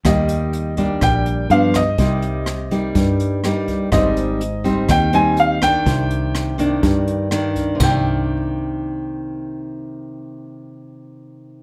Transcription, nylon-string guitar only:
\new Staff \with { instrumentName = "Nylon-string guitar" } { \time 4/4 \key c \minor \tempo 4 = 124 << { <g bes>4. <g bes d'>4. <f b d'>8 r8 | <g bes ees'>4 r8 <g bes ees'>4. <g bes ees'>4 | <g c' ees'>4 r8 <g c' ees'>4 <g c' ees'>4 <ees bes d'>8~ | <ees bes d'>4. <ees bes d'>4. <ees bes d'>4 |
<c ees bes d'>1~ | <c ees bes d'>1 | } \\ { ees2 bes,4 r4 | c2 g,2 | aes,2 ees2 | c2 g,2 |
r1 | r1 | } >> }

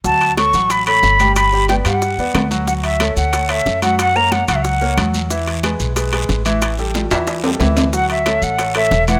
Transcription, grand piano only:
\new Staff \with { instrumentName = "Grand piano" } { \time 4/4 \key d \major \tempo 4 = 183 <fis fis' fis''>4 <a a' cis''>8 <fis fis' fis''>4 <a a' cis''>4 <g g' g''>8~ | <g g' g''>8 <g g' g''>8 <b b' d''>8 <g g' fis''>4 <b b' d''>4 <fis fis' fis''>8 | <fis fis' fis''>4 <a a' cis''>4 <a a' cis''>8 <a a' cis''>4 <fis fis' fis''>8~ | <fis fis' fis''>8 <ais ais' cis''>4 <fis fis' fis''>4 <ais ais' cis''>8 <fis fis' fis''>4 |
<e e' e''>4 <gis gis' b'>4 <gis gis' b'>8 <gis gis' b'>4 <e e' e''>8~ | <e e' e''>8 <g g' a'>4 <e e' e''>4 <g g' a'>8 <e e' e''>4 | <fis fis' fis''>4 <a a' cis''>4 <a a' cis''>8 <a a' cis''>4 <e e' e''>8 | }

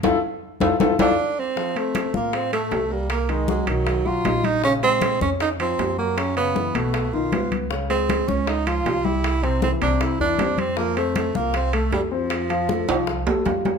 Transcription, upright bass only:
\new Staff \with { instrumentName = "Upright bass" } { \clef bass \time 4/4 \key c \mixolydian \tempo 4 = 156 f,8 r4 f,8 f,8 f,8 r4 | r4. a,4. c,4~ | c,4. b,,4 b,,8 bes,,4~ | bes,,4. f,4. ges,4~ |
ges,4. b,,4 b,,8 cis,4~ | cis,4. des,4. c,4~ | c,4. c,4 e,8 f,4~ | f,4. c,4. f,4~ |
f,4. c,4 e,8 f,4 | }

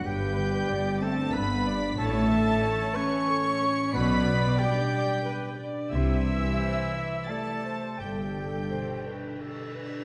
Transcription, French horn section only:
\new Staff \with { instrumentName = "French horn section" } { \time 3/4 \key g \major \tempo 4 = 92 g4. a8 b4 | a4. cis'4. | b4 g4. r8 | e2 a4 |
g2 r4 | }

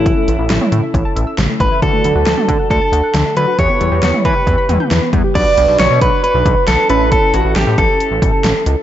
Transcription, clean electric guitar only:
\new Staff \with { instrumentName = "Clean electric guitar" } { \time 4/4 \key a \mixolydian \tempo 4 = 136 e'2.~ e'8 b'8 | a'2 a'4. b'8 | cis''4. b'2 r8 | d''4 cis''8 b'8 b'4 a'8 b'8 |
a'8 fis'8 g'8 a'2 r8 | }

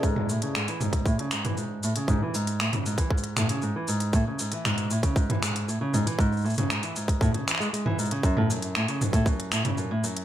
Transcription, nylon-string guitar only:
\new Staff \with { instrumentName = "Nylon-string guitar" } { \clef bass \time 4/4 \key fis \minor \tempo 4 = 117 gis,8 a,16 cis16 gis,16 e16 gis,8 a,16 cis16 gis,16 e16 gis,8 a,16 cis16 | gis,16 e16 gis,8 a,16 cis16 gis,16 e16 gis,8 a,16 cis16 gis,16 e16 gis,8 | a,16 cis16 gis,16 e16 gis,8 a,16 cis16 gis,16 e16 gis,8 a,16 cis16 gis,16 e16 | gis,8 a,16 cis16 gis,16 e16 gis,8 a,16 cis16 e16 gis16 gis16 e16 gis,16 cis16 |
fis,16 a,16 fis,8 a,16 cis16 fis,16 a,16 fis,8 a,16 cis16 fis,16 a,16 fis,8 | }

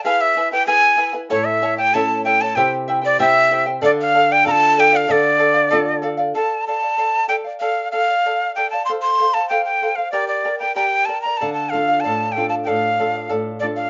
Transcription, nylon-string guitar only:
\new Staff \with { instrumentName = "Nylon-string guitar" } { \time 2/4 \key d \minor \tempo 4 = 95 r2 | a,4 <cis' e' a'>4 | c4 <c' e' g'>4 | d4 <d' f' a'>4 |
d4 <d' f' a'>4 | r2 | r2 | r2 |
r2 | d8 <d' f' a'>8 a,8 <d' f' a'>8 | a,8 <d' f' a'>8 a,8 <d' f' a'>8 | }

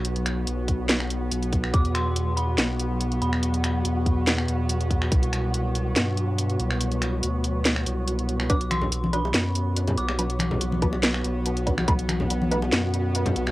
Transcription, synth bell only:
\new Staff \with { instrumentName = "Synth bell" } { \time 4/4 \key b \phrygian \tempo 4 = 142 r1 | d'''8 c'''4 b''2 b''8~ | b''2~ b''8 r4. | r1 |
r1 | d'''8 c'''4 b''2 d'''8~ | d'''2~ d'''8 r4. | r1 | }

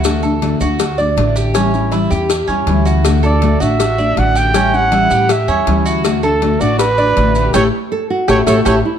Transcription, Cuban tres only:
\new Staff \with { instrumentName = "Cuban tres" } { \time 4/4 \key d \major \tempo 4 = 160 fis'8 a'4 fis'4 d''4 g'8 | cis'4 e'8 g'4 cis'4 fis'8~ | fis'8 a'4 fis'4 d''4 g'8 | cis'4 e'8 g'4 cis'4 fis'8~ |
fis'8 a'4 fis'4 d''4 g'8 | <e' g' a'>8 r4. <e' g' a'>8 <e' g' a'>8 <e' g' a'>8 r8 | }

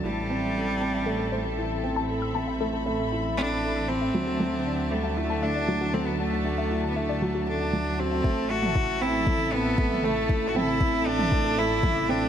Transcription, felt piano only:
\new Staff \with { instrumentName = "Felt piano" } { \time 4/4 \key a \dorian \tempo 4 = 117 e'8 c'8 a'8 c'8 a8 a8 e'8 c'8 | a'8 c'8 a8 a8 e'8 c'8 a'8 c'8 | fis8 fis8 d'8 a8 e'8 a8 fis8 fis8 | d'8 a8 e'8 a8 fis8 a'8 fis8 fis'8 |
a8 a8 e'8 c'8 a'8 c'8 a8 a8 | e'8 c'8 a'8 c'8 a8 a8 e'8 c'8 | }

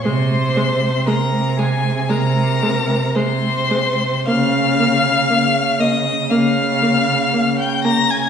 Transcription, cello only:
\new Staff \with { instrumentName = "Cello" } { \clef bass \time 4/4 \key aes \major \tempo 4 = 58 c4 c4 c4 c4 | des4 des4 des4 des4 | }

